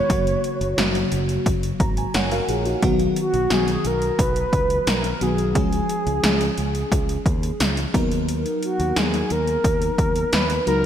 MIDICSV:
0, 0, Header, 1, 5, 480
1, 0, Start_track
1, 0, Tempo, 681818
1, 70, Time_signature, 4, 2, 24, 8
1, 7643, End_track
2, 0, Start_track
2, 0, Title_t, "Soft synth lead"
2, 0, Program_c, 0, 80
2, 0, Note_on_c, 0, 73, 111
2, 555, Note_off_c, 0, 73, 0
2, 2243, Note_on_c, 0, 66, 90
2, 2484, Note_on_c, 0, 68, 99
2, 2495, Note_off_c, 0, 66, 0
2, 2723, Note_on_c, 0, 70, 103
2, 2733, Note_off_c, 0, 68, 0
2, 2960, Note_on_c, 0, 71, 111
2, 2970, Note_off_c, 0, 70, 0
2, 3440, Note_on_c, 0, 70, 97
2, 3451, Note_off_c, 0, 71, 0
2, 3680, Note_on_c, 0, 68, 101
2, 3691, Note_off_c, 0, 70, 0
2, 3913, Note_off_c, 0, 68, 0
2, 3917, Note_on_c, 0, 68, 94
2, 5325, Note_off_c, 0, 68, 0
2, 6081, Note_on_c, 0, 66, 80
2, 6318, Note_on_c, 0, 68, 93
2, 6329, Note_off_c, 0, 66, 0
2, 6558, Note_on_c, 0, 70, 116
2, 6568, Note_off_c, 0, 68, 0
2, 7277, Note_on_c, 0, 71, 105
2, 7288, Note_off_c, 0, 70, 0
2, 7514, Note_off_c, 0, 71, 0
2, 7517, Note_on_c, 0, 70, 110
2, 7643, Note_off_c, 0, 70, 0
2, 7643, End_track
3, 0, Start_track
3, 0, Title_t, "FM electric piano"
3, 0, Program_c, 1, 5
3, 0, Control_c, 1, 64, 127
3, 0, Note_on_c, 1, 51, 62
3, 0, Note_on_c, 1, 56, 56
3, 0, Note_on_c, 1, 59, 56
3, 0, Note_on_c, 1, 66, 71
3, 62, Note_on_c, 1, 49, 71
3, 65, Note_on_c, 1, 54, 71
3, 69, Note_on_c, 1, 58, 71
3, 72, Note_off_c, 1, 66, 0
3, 72, Note_on_c, 1, 66, 81
3, 79, Control_c, 1, 64, 0
3, 81, Note_off_c, 1, 51, 0
3, 84, Note_off_c, 1, 56, 0
3, 85, Note_off_c, 1, 59, 0
3, 206, Control_c, 1, 64, 127
3, 364, Note_off_c, 1, 49, 0
3, 366, Note_off_c, 1, 54, 0
3, 368, Note_off_c, 1, 58, 0
3, 369, Note_off_c, 1, 66, 0
3, 544, Note_on_c, 1, 49, 76
3, 547, Note_on_c, 1, 54, 73
3, 551, Note_on_c, 1, 58, 73
3, 553, Note_on_c, 1, 66, 84
3, 1143, Note_off_c, 1, 49, 0
3, 1145, Note_off_c, 1, 54, 0
3, 1147, Note_off_c, 1, 58, 0
3, 1148, Note_off_c, 1, 66, 0
3, 1270, Note_on_c, 1, 82, 60
3, 1382, Note_off_c, 1, 82, 0
3, 1393, Note_on_c, 1, 80, 62
3, 1503, Note_off_c, 1, 80, 0
3, 1513, Note_on_c, 1, 73, 60
3, 1513, Note_on_c, 1, 78, 65
3, 1517, Note_on_c, 1, 70, 52
3, 1623, Note_off_c, 1, 78, 0
3, 1625, Note_off_c, 1, 70, 0
3, 1626, Note_off_c, 1, 73, 0
3, 1632, Note_on_c, 1, 77, 70
3, 1633, Note_on_c, 1, 70, 69
3, 1637, Note_on_c, 1, 66, 59
3, 1746, Note_off_c, 1, 70, 0
3, 1748, Note_off_c, 1, 66, 0
3, 1754, Note_on_c, 1, 68, 61
3, 1757, Note_on_c, 1, 65, 54
3, 1866, Note_off_c, 1, 68, 0
3, 1868, Note_off_c, 1, 65, 0
3, 1872, Note_on_c, 1, 66, 61
3, 1876, Note_on_c, 1, 63, 48
3, 1966, Note_off_c, 1, 77, 0
3, 1987, Note_off_c, 1, 66, 0
3, 1989, Note_on_c, 1, 51, 88
3, 1992, Note_on_c, 1, 54, 76
3, 1994, Note_on_c, 1, 59, 84
3, 1996, Note_on_c, 1, 66, 96
3, 1999, Control_c, 1, 64, 0
3, 2101, Note_off_c, 1, 63, 0
3, 2116, Control_c, 1, 64, 127
3, 2288, Note_off_c, 1, 51, 0
3, 2289, Note_off_c, 1, 54, 0
3, 2290, Note_off_c, 1, 59, 0
3, 2291, Note_off_c, 1, 66, 0
3, 2469, Note_on_c, 1, 51, 65
3, 2471, Note_on_c, 1, 54, 63
3, 2474, Note_on_c, 1, 59, 63
3, 2477, Note_on_c, 1, 66, 71
3, 3066, Note_off_c, 1, 51, 0
3, 3067, Note_off_c, 1, 54, 0
3, 3069, Note_off_c, 1, 59, 0
3, 3070, Note_off_c, 1, 66, 0
3, 3668, Note_on_c, 1, 51, 60
3, 3672, Note_on_c, 1, 54, 53
3, 3674, Note_on_c, 1, 59, 56
3, 3676, Note_on_c, 1, 66, 67
3, 3818, Note_off_c, 1, 51, 0
3, 3820, Note_off_c, 1, 54, 0
3, 3821, Note_off_c, 1, 59, 0
3, 3822, Note_off_c, 1, 66, 0
3, 3906, Note_on_c, 1, 53, 74
3, 3907, Note_on_c, 1, 56, 69
3, 3911, Note_on_c, 1, 61, 68
3, 3914, Note_on_c, 1, 68, 81
3, 3920, Control_c, 1, 64, 0
3, 4063, Control_c, 1, 64, 127
3, 4207, Note_off_c, 1, 53, 0
3, 4207, Note_off_c, 1, 56, 0
3, 4209, Note_off_c, 1, 61, 0
3, 4210, Note_off_c, 1, 68, 0
3, 4386, Note_on_c, 1, 53, 66
3, 4390, Note_on_c, 1, 56, 65
3, 4393, Note_on_c, 1, 61, 61
3, 4396, Note_on_c, 1, 68, 75
3, 4985, Note_off_c, 1, 53, 0
3, 4987, Note_off_c, 1, 56, 0
3, 4988, Note_off_c, 1, 61, 0
3, 4989, Note_off_c, 1, 68, 0
3, 5586, Note_on_c, 1, 54, 81
3, 5589, Note_on_c, 1, 59, 77
3, 5591, Note_on_c, 1, 63, 80
3, 5594, Note_on_c, 1, 70, 97
3, 5598, Control_c, 1, 64, 0
3, 5713, Control_c, 1, 64, 127
3, 6164, Note_off_c, 1, 54, 0
3, 6165, Note_off_c, 1, 59, 0
3, 6167, Note_off_c, 1, 63, 0
3, 6168, Note_off_c, 1, 70, 0
3, 6308, Note_on_c, 1, 54, 69
3, 6310, Note_on_c, 1, 59, 62
3, 6312, Note_on_c, 1, 63, 63
3, 6315, Note_on_c, 1, 70, 73
3, 6905, Note_off_c, 1, 54, 0
3, 6907, Note_off_c, 1, 59, 0
3, 6908, Note_off_c, 1, 63, 0
3, 6909, Note_off_c, 1, 70, 0
3, 7504, Note_on_c, 1, 54, 63
3, 7507, Note_on_c, 1, 59, 57
3, 7510, Note_on_c, 1, 63, 56
3, 7512, Note_on_c, 1, 66, 70
3, 7643, Note_off_c, 1, 54, 0
3, 7643, Note_off_c, 1, 59, 0
3, 7643, Note_off_c, 1, 63, 0
3, 7643, Note_off_c, 1, 66, 0
3, 7643, End_track
4, 0, Start_track
4, 0, Title_t, "Fingered electric bass"
4, 0, Program_c, 2, 33
4, 70, Note_on_c, 2, 30, 91
4, 243, Note_off_c, 2, 30, 0
4, 429, Note_on_c, 2, 30, 88
4, 516, Note_off_c, 2, 30, 0
4, 548, Note_on_c, 2, 30, 87
4, 722, Note_off_c, 2, 30, 0
4, 790, Note_on_c, 2, 30, 88
4, 963, Note_off_c, 2, 30, 0
4, 1028, Note_on_c, 2, 30, 88
4, 1202, Note_off_c, 2, 30, 0
4, 1267, Note_on_c, 2, 32, 87
4, 1441, Note_off_c, 2, 32, 0
4, 1510, Note_on_c, 2, 30, 96
4, 1683, Note_off_c, 2, 30, 0
4, 1749, Note_on_c, 2, 34, 80
4, 1922, Note_off_c, 2, 34, 0
4, 1990, Note_on_c, 2, 35, 92
4, 2163, Note_off_c, 2, 35, 0
4, 2349, Note_on_c, 2, 35, 87
4, 2436, Note_off_c, 2, 35, 0
4, 2468, Note_on_c, 2, 35, 91
4, 2642, Note_off_c, 2, 35, 0
4, 2709, Note_on_c, 2, 35, 92
4, 2882, Note_off_c, 2, 35, 0
4, 2949, Note_on_c, 2, 35, 100
4, 3122, Note_off_c, 2, 35, 0
4, 3187, Note_on_c, 2, 37, 80
4, 3361, Note_off_c, 2, 37, 0
4, 3429, Note_on_c, 2, 35, 96
4, 3602, Note_off_c, 2, 35, 0
4, 3669, Note_on_c, 2, 35, 87
4, 3910, Note_off_c, 2, 35, 0
4, 3910, Note_on_c, 2, 37, 93
4, 4083, Note_off_c, 2, 37, 0
4, 4270, Note_on_c, 2, 37, 90
4, 4357, Note_off_c, 2, 37, 0
4, 4391, Note_on_c, 2, 37, 97
4, 4563, Note_off_c, 2, 37, 0
4, 4632, Note_on_c, 2, 37, 86
4, 4804, Note_off_c, 2, 37, 0
4, 4870, Note_on_c, 2, 37, 98
4, 5043, Note_off_c, 2, 37, 0
4, 5109, Note_on_c, 2, 39, 88
4, 5282, Note_off_c, 2, 39, 0
4, 5352, Note_on_c, 2, 37, 96
4, 5524, Note_off_c, 2, 37, 0
4, 5592, Note_on_c, 2, 39, 91
4, 5937, Note_off_c, 2, 39, 0
4, 6192, Note_on_c, 2, 39, 79
4, 6278, Note_off_c, 2, 39, 0
4, 6312, Note_on_c, 2, 39, 95
4, 6484, Note_off_c, 2, 39, 0
4, 6552, Note_on_c, 2, 39, 80
4, 6724, Note_off_c, 2, 39, 0
4, 6789, Note_on_c, 2, 39, 93
4, 6962, Note_off_c, 2, 39, 0
4, 7028, Note_on_c, 2, 39, 79
4, 7202, Note_off_c, 2, 39, 0
4, 7274, Note_on_c, 2, 39, 86
4, 7445, Note_off_c, 2, 39, 0
4, 7513, Note_on_c, 2, 37, 82
4, 7643, Note_off_c, 2, 37, 0
4, 7643, End_track
5, 0, Start_track
5, 0, Title_t, "Drums"
5, 69, Note_on_c, 9, 36, 105
5, 70, Note_on_c, 9, 42, 88
5, 140, Note_off_c, 9, 36, 0
5, 140, Note_off_c, 9, 42, 0
5, 191, Note_on_c, 9, 42, 50
5, 261, Note_off_c, 9, 42, 0
5, 310, Note_on_c, 9, 42, 64
5, 380, Note_off_c, 9, 42, 0
5, 431, Note_on_c, 9, 42, 50
5, 501, Note_off_c, 9, 42, 0
5, 549, Note_on_c, 9, 38, 96
5, 549, Note_on_c, 9, 42, 77
5, 619, Note_off_c, 9, 38, 0
5, 620, Note_off_c, 9, 42, 0
5, 670, Note_on_c, 9, 42, 45
5, 740, Note_off_c, 9, 42, 0
5, 786, Note_on_c, 9, 42, 65
5, 857, Note_off_c, 9, 42, 0
5, 908, Note_on_c, 9, 42, 48
5, 978, Note_off_c, 9, 42, 0
5, 1028, Note_on_c, 9, 36, 85
5, 1030, Note_on_c, 9, 42, 74
5, 1098, Note_off_c, 9, 36, 0
5, 1100, Note_off_c, 9, 42, 0
5, 1149, Note_on_c, 9, 42, 52
5, 1219, Note_off_c, 9, 42, 0
5, 1267, Note_on_c, 9, 36, 80
5, 1267, Note_on_c, 9, 42, 59
5, 1337, Note_off_c, 9, 36, 0
5, 1338, Note_off_c, 9, 42, 0
5, 1388, Note_on_c, 9, 42, 48
5, 1458, Note_off_c, 9, 42, 0
5, 1508, Note_on_c, 9, 42, 85
5, 1510, Note_on_c, 9, 38, 97
5, 1579, Note_off_c, 9, 42, 0
5, 1581, Note_off_c, 9, 38, 0
5, 1630, Note_on_c, 9, 42, 51
5, 1700, Note_off_c, 9, 42, 0
5, 1750, Note_on_c, 9, 42, 61
5, 1820, Note_off_c, 9, 42, 0
5, 1869, Note_on_c, 9, 42, 45
5, 1940, Note_off_c, 9, 42, 0
5, 1989, Note_on_c, 9, 36, 109
5, 1989, Note_on_c, 9, 42, 85
5, 2059, Note_off_c, 9, 42, 0
5, 2060, Note_off_c, 9, 36, 0
5, 2108, Note_on_c, 9, 42, 48
5, 2179, Note_off_c, 9, 42, 0
5, 2227, Note_on_c, 9, 42, 67
5, 2298, Note_off_c, 9, 42, 0
5, 2349, Note_on_c, 9, 42, 46
5, 2419, Note_off_c, 9, 42, 0
5, 2467, Note_on_c, 9, 38, 96
5, 2467, Note_on_c, 9, 42, 80
5, 2537, Note_off_c, 9, 38, 0
5, 2538, Note_off_c, 9, 42, 0
5, 2589, Note_on_c, 9, 42, 49
5, 2660, Note_off_c, 9, 42, 0
5, 2707, Note_on_c, 9, 42, 68
5, 2778, Note_off_c, 9, 42, 0
5, 2828, Note_on_c, 9, 42, 47
5, 2899, Note_off_c, 9, 42, 0
5, 2948, Note_on_c, 9, 36, 87
5, 2951, Note_on_c, 9, 42, 81
5, 3019, Note_off_c, 9, 36, 0
5, 3022, Note_off_c, 9, 42, 0
5, 3069, Note_on_c, 9, 42, 52
5, 3140, Note_off_c, 9, 42, 0
5, 3188, Note_on_c, 9, 36, 78
5, 3190, Note_on_c, 9, 42, 59
5, 3258, Note_off_c, 9, 36, 0
5, 3260, Note_off_c, 9, 42, 0
5, 3310, Note_on_c, 9, 42, 52
5, 3380, Note_off_c, 9, 42, 0
5, 3429, Note_on_c, 9, 42, 85
5, 3431, Note_on_c, 9, 38, 97
5, 3500, Note_off_c, 9, 42, 0
5, 3501, Note_off_c, 9, 38, 0
5, 3549, Note_on_c, 9, 42, 55
5, 3619, Note_off_c, 9, 42, 0
5, 3670, Note_on_c, 9, 42, 64
5, 3740, Note_off_c, 9, 42, 0
5, 3790, Note_on_c, 9, 42, 47
5, 3861, Note_off_c, 9, 42, 0
5, 3909, Note_on_c, 9, 36, 106
5, 3909, Note_on_c, 9, 42, 90
5, 3980, Note_off_c, 9, 36, 0
5, 3980, Note_off_c, 9, 42, 0
5, 4031, Note_on_c, 9, 42, 51
5, 4101, Note_off_c, 9, 42, 0
5, 4150, Note_on_c, 9, 42, 64
5, 4220, Note_off_c, 9, 42, 0
5, 4271, Note_on_c, 9, 42, 51
5, 4341, Note_off_c, 9, 42, 0
5, 4390, Note_on_c, 9, 38, 96
5, 4390, Note_on_c, 9, 42, 78
5, 4460, Note_off_c, 9, 38, 0
5, 4461, Note_off_c, 9, 42, 0
5, 4511, Note_on_c, 9, 42, 50
5, 4581, Note_off_c, 9, 42, 0
5, 4629, Note_on_c, 9, 42, 65
5, 4700, Note_off_c, 9, 42, 0
5, 4750, Note_on_c, 9, 42, 48
5, 4821, Note_off_c, 9, 42, 0
5, 4869, Note_on_c, 9, 36, 90
5, 4873, Note_on_c, 9, 42, 80
5, 4940, Note_off_c, 9, 36, 0
5, 4944, Note_off_c, 9, 42, 0
5, 4992, Note_on_c, 9, 42, 52
5, 5063, Note_off_c, 9, 42, 0
5, 5109, Note_on_c, 9, 36, 76
5, 5112, Note_on_c, 9, 42, 57
5, 5179, Note_off_c, 9, 36, 0
5, 5183, Note_off_c, 9, 42, 0
5, 5232, Note_on_c, 9, 42, 50
5, 5303, Note_off_c, 9, 42, 0
5, 5352, Note_on_c, 9, 42, 87
5, 5354, Note_on_c, 9, 38, 92
5, 5422, Note_off_c, 9, 42, 0
5, 5424, Note_off_c, 9, 38, 0
5, 5472, Note_on_c, 9, 42, 53
5, 5542, Note_off_c, 9, 42, 0
5, 5591, Note_on_c, 9, 36, 97
5, 5594, Note_on_c, 9, 42, 64
5, 5662, Note_off_c, 9, 36, 0
5, 5664, Note_off_c, 9, 42, 0
5, 5713, Note_on_c, 9, 42, 51
5, 5783, Note_off_c, 9, 42, 0
5, 5833, Note_on_c, 9, 42, 89
5, 5903, Note_off_c, 9, 42, 0
5, 5954, Note_on_c, 9, 42, 51
5, 6024, Note_off_c, 9, 42, 0
5, 6072, Note_on_c, 9, 42, 69
5, 6143, Note_off_c, 9, 42, 0
5, 6193, Note_on_c, 9, 42, 48
5, 6263, Note_off_c, 9, 42, 0
5, 6311, Note_on_c, 9, 38, 98
5, 6311, Note_on_c, 9, 42, 78
5, 6381, Note_off_c, 9, 38, 0
5, 6382, Note_off_c, 9, 42, 0
5, 6433, Note_on_c, 9, 42, 47
5, 6503, Note_off_c, 9, 42, 0
5, 6549, Note_on_c, 9, 42, 66
5, 6619, Note_off_c, 9, 42, 0
5, 6670, Note_on_c, 9, 42, 46
5, 6741, Note_off_c, 9, 42, 0
5, 6789, Note_on_c, 9, 36, 92
5, 6791, Note_on_c, 9, 42, 81
5, 6859, Note_off_c, 9, 36, 0
5, 6862, Note_off_c, 9, 42, 0
5, 6911, Note_on_c, 9, 42, 52
5, 6981, Note_off_c, 9, 42, 0
5, 7029, Note_on_c, 9, 36, 76
5, 7031, Note_on_c, 9, 42, 63
5, 7099, Note_off_c, 9, 36, 0
5, 7102, Note_off_c, 9, 42, 0
5, 7150, Note_on_c, 9, 42, 52
5, 7220, Note_off_c, 9, 42, 0
5, 7270, Note_on_c, 9, 42, 87
5, 7272, Note_on_c, 9, 38, 94
5, 7340, Note_off_c, 9, 42, 0
5, 7342, Note_off_c, 9, 38, 0
5, 7391, Note_on_c, 9, 42, 49
5, 7461, Note_off_c, 9, 42, 0
5, 7512, Note_on_c, 9, 42, 62
5, 7582, Note_off_c, 9, 42, 0
5, 7643, End_track
0, 0, End_of_file